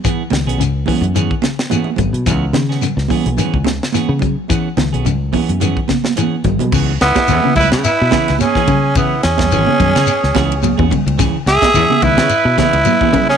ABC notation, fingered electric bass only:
X:1
M:4/4
L:1/16
Q:"Swing 16ths" 1/4=108
K:C#m
V:1 name="Fingered electric bass" clef=bass
z2 C,, B,,, C,,2 z F,,2 z4 z G,,, B,, | C,,2 C,2 z C,, z B,,, z C,,2 z2 C,2 z | z2 C,, B,,, C,,2 z F,,2 z4 z G,,, B,, | C,,2 C,, z E,, z C,, C, z B,, z C,, z2 C,2- |
C,2 E,,2 G,,, z F,, C, z C,, C,,3 E,, z C,,- | C,, z C,, z E,, z C,, C, z B,, z C,, z2 C,2 |]